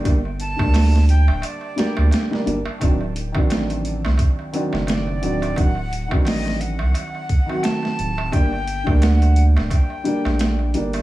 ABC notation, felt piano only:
X:1
M:4/4
L:1/16
Q:"Swing 16ths" 1/4=87
K:Gm
V:1 name="Felt piano" clef=bass
[D,G,B,D] z2 [D,G,B,D]6- [D,G,B,D] [D,G,B,G]3 [D,G,B,D] [D,G,B,D] z | [E,^F,CD] z2 [E,F,CD]6- [E,F,CD] [E,F,CD]4 [E,F,CD]2 | [E,^F,CD] z2 [E,F,CD]6- [E,F,CD] z [E,F,C^F]4- [E,F,CF] | [D,G,B,D] z2 [D,G,B,D]6- [D,G,B,D] [D,G,B,D]4 [D,G,B,D]2 |]